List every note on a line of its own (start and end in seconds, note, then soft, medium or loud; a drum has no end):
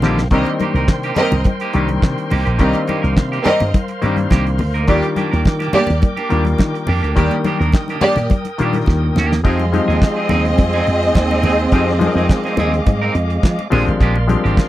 0.00 0.24 A#1 medium
0.00 0.23 D3 medium
0.00 0.23 G3 medium
0.00 0.23 A#3 medium
0.00 0.20 A#3 medium
0.00 0.23 C4 medium
0.00 0.28 A#4 medium
0.00 0.30 C5 medium
0.00 0.28 F5 medium
0.00 0.28 G5 medium
0.00 0.28 C6 medium
0.00 snare medium
0.00 low conga medium
0.05 0.24 D#4 medium
0.05 0.20 F4 medium
0.05 0.18 G4 medium
0.18 muted clean electric guitar stroke soft
0.18 snare medium
0.31 0.43 C2 medium
0.31 1.10 D#3 medium
0.31 1.11 G3 medium
0.31 1.11 A#3 medium
0.31 0.48 A#3 medium
0.31 0.45 C4 medium
0.31 1.11 C4 medium
0.31 1.11 D4 medium
0.31 0.49 D#4 medium
0.31 0.49 G4 medium
0.31 0.45 A#4 medium
0.31 9.41 A#4 medium
0.31 4.85 C5 medium
0.31 0.45 D#5 medium
0.31 2.58 G5 medium
0.31 4.85 C6 medium
0.31 kick medium
0.31 closed hi-hat medium
0.45 closed hi-hat soft
0.45 muted conga soft
0.60 0.73 A#3 medium
0.60 0.74 D#4 medium
0.60 0.74 G4 medium
0.60 closed hi-hat medium
0.60 high conga medium
0.74 0.85 C2 medium
0.74 0.88 A#3 soft
0.74 0.88 D#4 medium
0.74 0.87 A#4 medium
0.74 closed hi-hat soft
0.88 1.11 C3 loud
0.88 muted clean electric guitar stroke soft
0.88 kick loud
0.88 snare loud
0.88 clap medium
0.88 muted conga soft
1.03 1.16 A#3 medium
1.03 1.16 D#4 medium
1.03 1.15 G4 medium
1.03 closed hi-hat medium
1.16 1.34 A#3 medium
1.16 1.41 C4 loud
1.16 1.32 D#4 medium
1.16 1.31 G4 medium
1.16 1.42 A#4 loud
1.16 1.42 D#5 loud
1.16 closed hi-hat medium
1.16 high conga medium
1.16 low conga medium
1.31 1.42 C2 medium
1.31 muted clean electric guitar stroke soft
1.31 closed hi-hat medium
1.31 low conga medium
1.44 muted clean electric guitar stroke soft
1.44 kick loud
1.44 closed hi-hat medium
1.44 muted conga soft
1.44 high conga medium
1.60 1.73 A#3 medium
1.60 1.74 D#4 medium
1.60 1.75 G4 medium
1.60 closed hi-hat soft
1.73 1.97 C2 medium
1.73 2.33 D#3 medium
1.73 2.33 G3 medium
1.73 1.87 A#3 medium
1.73 2.33 A#3 medium
1.73 2.33 C4 medium
1.73 2.34 D4 medium
1.73 1.88 D#4 medium
1.73 1.88 G4 medium
1.73 closed hi-hat medium
1.89 muted clean electric guitar stroke soft
1.89 closed hi-hat soft
1.89 high conga medium
2.02 2.14 C3 medium
2.02 muted clean electric guitar stroke soft
2.02 kick loud
2.02 snare loud
2.02 clap medium
2.18 muted clean electric guitar stroke soft
2.18 closed hi-hat soft
2.30 2.43 C2 medium
2.30 2.46 A#3 medium
2.30 2.45 D#4 medium
2.30 2.44 G4 medium
2.30 open hi-hat medium
2.30 low conga medium
2.45 2.57 A#1 medium
2.45 2.57 A#3 medium
2.45 2.58 D#4 medium
2.45 2.58 G4 medium
2.45 closed hi-hat soft
2.58 2.71 C2 medium
2.58 3.38 D#3 medium
2.58 3.38 G3 medium
2.58 2.76 A#3 medium
2.58 3.39 A#3 medium
2.58 3.39 C4 medium
2.58 2.73 C4 medium
2.58 3.39 D4 medium
2.58 2.76 D#4 medium
2.58 2.77 G4 medium
2.58 2.73 A#4 medium
2.58 2.73 D#5 medium
2.58 4.86 F5 medium
2.58 kick loud
2.58 closed hi-hat medium
2.73 closed hi-hat soft
2.73 muted conga soft
2.87 3.01 A#3 medium
2.87 3.02 D#4 medium
2.87 3.02 G4 medium
2.87 closed hi-hat medium
2.87 high conga medium
3.02 3.18 C2 medium
3.02 3.16 A#3 soft
3.02 3.15 D#4 medium
3.02 3.15 A#4 medium
3.02 closed hi-hat soft
3.16 3.39 C3 loud
3.16 muted clean electric guitar stroke soft
3.16 kick loud
3.16 snare loud
3.16 clap medium
3.32 3.44 A#3 medium
3.32 3.44 D#4 medium
3.32 3.44 G4 medium
3.32 closed hi-hat medium
3.45 3.62 A#3 medium
3.45 3.70 C4 loud
3.45 3.60 D#4 medium
3.45 3.59 G4 medium
3.45 3.70 A#4 loud
3.45 3.70 D#5 loud
3.45 closed hi-hat medium
3.45 high conga medium
3.45 low conga medium
3.60 3.72 G2 medium
3.60 muted clean electric guitar stroke soft
3.60 closed hi-hat medium
3.60 low conga medium
3.74 kick loud
3.74 closed hi-hat medium
3.74 muted conga soft
3.74 high conga medium
3.88 muted clean electric guitar stroke soft
3.88 closed hi-hat soft
4.02 4.25 G2 medium
4.02 4.61 D#3 medium
4.02 4.61 G3 medium
4.02 4.19 A#3 medium
4.02 4.61 A#3 medium
4.02 4.62 C4 medium
4.02 4.62 D4 medium
4.02 4.17 D#4 medium
4.02 4.16 G4 medium
4.02 closed hi-hat medium
4.17 muted clean electric guitar stroke soft
4.17 closed hi-hat soft
4.17 high conga medium
4.30 4.60 C2 medium
4.30 4.48 A#3 medium
4.30 4.46 D#4 medium
4.30 4.45 G4 medium
4.30 kick loud
4.30 snare loud
4.30 clap medium
4.30 muted conga soft
4.46 muted clean electric guitar stroke soft
4.46 closed hi-hat soft
4.58 4.88 D2 medium
4.58 muted clean electric guitar stroke soft
4.58 open hi-hat medium
4.58 low conga medium
4.74 4.86 A#3 medium
4.74 4.87 D#4 medium
4.74 4.86 A#4 medium
4.74 closed hi-hat soft
4.87 5.00 D#2 medium
4.87 5.67 D#3 medium
4.87 4.95 F#3 medium
4.87 5.05 A#3 medium
4.87 5.01 A#3 medium
4.87 5.67 A#3 medium
4.87 5.05 D4 medium
4.87 5.68 D4 medium
4.87 5.68 F4 medium
4.87 5.01 G4 medium
4.87 5.05 G4 medium
4.87 5.01 D5 medium
4.87 9.41 G5 medium
4.87 7.14 D6 medium
4.87 kick loud
4.87 closed hi-hat medium
4.87 muted conga soft
4.95 5.70 G3 medium
5.03 closed hi-hat soft
5.16 5.30 A#3 medium
5.16 5.30 D4 medium
5.16 5.31 G4 medium
5.16 closed hi-hat medium
5.16 high conga medium
5.31 5.43 D#2 loud
5.31 5.43 A#3 soft
5.31 5.44 D4 medium
5.31 5.43 A#4 medium
5.31 closed hi-hat soft
5.44 5.68 D#3 loud
5.44 muted clean electric guitar stroke soft
5.44 kick loud
5.44 snare loud
5.44 clap medium
5.44 muted conga soft
5.59 5.72 A#3 medium
5.59 5.72 D4 medium
5.59 5.72 G4 medium
5.59 closed hi-hat medium
5.59 muted conga soft
5.73 5.90 A#3 medium
5.73 5.98 A#3 loud
5.73 5.88 D4 loud
5.73 5.98 G4 loud
5.73 5.87 G4 loud
5.73 5.99 D5 loud
5.73 closed hi-hat medium
5.73 high conga medium
5.73 low conga medium
5.87 6.00 D#2 medium
5.87 muted clean electric guitar stroke soft
5.87 closed hi-hat medium
5.87 low conga medium
6.01 muted clean electric guitar stroke soft
6.01 kick loud
6.01 closed hi-hat medium
6.01 high conga medium
6.17 6.28 A#3 medium
6.17 6.29 D4 medium
6.17 6.30 G4 medium
6.17 closed hi-hat soft
6.17 muted conga soft
6.29 6.54 D#2 medium
6.29 6.89 D#3 medium
6.29 6.89 G3 medium
6.29 6.43 A#3 medium
6.29 6.89 A#3 medium
6.29 6.44 D4 medium
6.29 6.90 D4 medium
6.29 6.90 F4 medium
6.29 6.43 G4 medium
6.29 closed hi-hat medium
6.44 muted clean electric guitar stroke medium
6.44 closed hi-hat soft
6.44 high conga medium
6.59 6.71 D#3 medium
6.59 muted clean electric guitar stroke soft
6.59 kick loud
6.59 snare loud
6.59 clap medium
6.59 muted conga soft
6.75 muted clean electric guitar stroke soft
6.75 closed hi-hat soft
6.87 7.00 F2 loud
6.87 7.03 A#3 medium
6.87 7.03 D4 medium
6.87 7.02 G4 medium
6.87 open hi-hat medium
6.87 low conga medium
7.03 7.14 D2 medium
7.03 7.15 A#3 soft
7.03 7.15 D4 medium
7.03 7.15 G4 medium
7.03 closed hi-hat soft
7.16 7.29 D#2 loud
7.16 7.95 D#3 loud
7.16 7.95 G3 medium
7.16 7.29 A#3 medium
7.16 7.33 A#3 medium
7.16 7.95 A#3 medium
7.16 7.33 D4 medium
7.16 7.96 D4 medium
7.16 7.29 G4 medium
7.16 7.96 G4 loud
7.16 7.34 G4 medium
7.16 7.29 D5 medium
7.16 9.42 D#6 medium
7.16 kick loud
7.16 closed hi-hat medium
7.31 closed hi-hat soft
7.31 muted conga soft
7.44 7.58 A#3 medium
7.44 7.58 D4 medium
7.44 7.59 G4 medium
7.44 closed hi-hat medium
7.44 high conga medium
7.59 7.71 D#2 loud
7.59 7.73 A#3 soft
7.59 7.72 D4 medium
7.59 7.71 A#4 medium
7.59 closed hi-hat soft
7.72 7.96 D#3 medium
7.72 muted clean electric guitar stroke soft
7.72 kick loud
7.72 snare loud
7.72 clap medium
7.72 muted conga soft
7.88 8.01 A#3 medium
7.88 8.01 D4 medium
7.88 8.01 G4 medium
7.88 closed hi-hat medium
7.88 muted conga soft
8.01 8.26 A#3 loud
8.01 8.19 A#3 loud
8.01 8.18 D4 medium
8.01 8.26 G4 loud
8.01 8.17 G4 loud
8.01 8.26 D5 loud
8.01 closed hi-hat medium
8.01 high conga medium
8.01 low conga medium
8.16 8.27 A#2 medium
8.16 muted clean electric guitar stroke soft
8.16 closed hi-hat medium
8.16 low conga medium
8.30 kick loud
8.30 closed hi-hat medium
8.30 high conga medium
8.45 muted clean electric guitar stroke soft
8.45 closed hi-hat medium
8.45 muted conga soft
8.58 8.82 A#2 medium
8.58 9.17 D#3 medium
8.58 9.18 G3 medium
8.58 9.18 A#3 medium
8.58 8.76 A#3 medium
8.58 9.18 D4 medium
8.58 8.76 D4 medium
8.58 9.18 F4 medium
8.58 8.75 G4 medium
8.58 closed hi-hat medium
8.73 muted clean electric guitar stroke medium
8.73 closed hi-hat soft
8.73 high conga medium
8.86 9.10 D#2 medium
8.86 muted clean electric guitar stroke medium
8.86 kick loud
8.86 snare medium
8.86 muted conga soft
9.04 muted clean electric guitar stroke soft
9.16 9.38 D#2 medium
9.16 9.37 A#3 medium
9.16 9.33 D4 medium
9.16 9.31 G4 loud
9.16 snare medium
9.16 low conga medium
9.32 muted clean electric guitar stroke soft
9.32 snare medium
9.44 9.78 F2 loud
9.44 9.64 F3 medium
9.44 9.64 G#3 medium
9.44 13.68 G#3 medium
9.44 9.65 C4 medium
9.44 13.68 C4 medium
9.44 9.62 C4 medium
9.44 9.65 D#4 medium
9.44 9.60 D#4 medium
9.44 9.65 G4 loud
9.44 13.68 G#4 medium
9.44 9.59 G#4 medium
9.44 13.68 D#5 medium
9.44 13.68 D#5 loud
9.44 13.68 F5 medium
9.44 11.70 C6 medium
9.44 kick loud
9.44 crash medium
9.59 muted clean electric guitar stroke soft
9.59 closed hi-hat soft
9.59 muted conga soft
9.73 10.51 F3 medium
9.73 10.51 G#3 medium
9.73 10.52 C4 medium
9.73 10.52 D#4 medium
9.73 10.52 G4 medium
9.73 muted clean electric guitar stroke soft
9.73 closed hi-hat medium
9.73 high conga medium
9.88 9.99 D#2 medium
9.88 10.00 C4 medium
9.88 10.00 D#4 medium
9.88 10.00 G#4 medium
9.88 closed hi-hat soft
10.01 muted clean electric guitar stroke soft
10.01 kick loud
10.01 snare loud
10.01 clap medium
10.01 closed hi-hat medium
10.16 10.27 C4 medium
10.16 10.29 D#4 medium
10.16 10.28 G#4 medium
10.29 10.52 D#2 medium
10.29 10.46 C4 medium
10.29 10.45 D#4 medium
10.29 10.43 G#4 medium
10.29 closed hi-hat medium
10.29 high conga medium
10.29 low conga medium
10.44 muted clean electric guitar stroke soft
10.44 closed hi-hat medium
10.58 10.80 F2 medium
10.58 muted clean electric guitar stroke soft
10.58 kick loud
10.58 closed hi-hat medium
10.58 high conga medium
10.74 10.86 C4 medium
10.74 10.87 D#4 medium
10.74 10.87 G#4 medium
10.74 muted conga soft
10.87 11.09 F2 medium
10.87 muted clean electric guitar stroke soft
10.87 closed hi-hat medium
11.02 muted clean electric guitar stroke soft
11.02 closed hi-hat soft
11.15 11.37 D#2 medium
11.15 muted clean electric guitar stroke soft
11.15 kick loud
11.15 snare loud
11.15 clap loud
11.15 closed hi-hat medium
11.15 muted conga soft
11.31 11.43 C4 medium
11.31 11.43 D#4 medium
11.31 11.42 G#4 medium
11.31 muted conga soft
11.43 11.66 D#2 medium
11.43 11.61 C4 medium
11.43 11.60 D#4 medium
11.43 11.58 G#4 medium
11.43 open hi-hat medium
11.43 low conga medium
11.60 muted clean electric guitar stroke soft
11.60 closed hi-hat soft
11.72 12.06 F2 medium
11.72 11.93 F3 medium
11.72 11.93 G#3 medium
11.72 11.89 C4 medium
11.72 11.93 C4 medium
11.72 11.93 D#4 medium
11.72 11.88 D#4 medium
11.72 11.93 G4 loud
11.72 11.87 G#4 medium
11.72 13.70 D6 medium
11.72 kick loud
11.72 closed hi-hat medium
11.88 muted clean electric guitar stroke medium
11.88 snare soft
11.99 12.79 F3 medium
11.99 12.79 G#3 medium
11.99 12.79 C4 medium
11.99 12.79 D#4 medium
11.99 12.08 G#4 medium
11.99 muted clean electric guitar stroke soft
11.99 closed hi-hat medium
11.99 high conga medium
12.07 12.83 A#4 loud
12.15 12.26 F2 medium
12.15 12.29 C4 medium
12.15 12.28 D#4 medium
12.15 12.28 G#4 medium
12.15 closed hi-hat soft
12.29 muted clean electric guitar stroke soft
12.29 kick loud
12.29 snare loud
12.29 clap medium
12.29 closed hi-hat medium
12.44 12.57 C4 medium
12.44 12.57 D#4 medium
12.44 12.56 G#4 medium
12.44 closed hi-hat soft
12.44 muted conga soft
12.57 12.79 D#2 medium
12.57 12.74 C4 medium
12.57 12.73 D#4 medium
12.57 12.72 G#4 medium
12.57 closed hi-hat medium
12.57 high conga medium
12.57 low conga medium
12.73 muted clean electric guitar stroke soft
12.73 closed hi-hat medium
12.86 13.09 G#2 medium
12.86 muted clean electric guitar stroke soft
12.86 kick loud
12.86 closed hi-hat medium
12.86 muted conga soft
12.86 high conga medium
13.02 13.14 C4 medium
13.02 13.15 D#4 medium
13.02 13.16 A#4 medium
13.15 13.37 F2 loud
13.15 muted clean electric guitar stroke soft
13.15 closed hi-hat medium
13.30 muted clean electric guitar stroke soft
13.30 closed hi-hat soft
13.43 13.55 F3 medium
13.43 kick loud
13.43 snare loud
13.43 clap medium
13.43 closed hi-hat medium
13.59 muted clean electric guitar stroke soft
13.59 closed hi-hat soft
13.59 muted conga soft
13.70 13.84 A#1 loud
13.70 14.18 F3 medium
13.70 14.18 G#3 medium
13.70 13.88 G#3 medium
13.70 14.18 C4 medium
13.70 14.18 D4 medium
13.70 13.87 D4 medium
13.70 14.18 G4 loud
13.70 13.87 G#4 loud
13.70 14.69 A#4 medium
13.70 14.69 D5 medium
13.70 14.69 F5 medium
13.70 14.69 C6 medium
13.70 open hi-hat medium
13.70 low conga medium
13.87 13.98 G#1 medium
13.87 muted clean electric guitar stroke soft
13.87 closed hi-hat soft
14.00 14.34 A#1 loud
14.00 14.17 G#3 medium
14.00 14.16 D4 medium
14.00 14.15 G4 medium
14.00 kick loud
14.00 closed hi-hat medium
14.16 muted clean electric guitar stroke soft
14.16 muted conga soft
14.28 14.69 F3 medium
14.28 14.69 G#3 medium
14.28 14.69 C4 medium
14.28 14.69 D4 medium
14.28 14.69 G4 medium
14.28 muted clean electric guitar stroke soft
14.28 closed hi-hat medium
14.28 high conga medium
14.44 14.55 G#1 loud
14.44 14.56 G#3 medium
14.44 14.56 D4 medium
14.44 14.56 G4 medium
14.44 closed hi-hat soft
14.57 muted clean electric guitar stroke soft
14.57 kick loud
14.57 snare loud
14.57 clap medium
14.57 closed hi-hat medium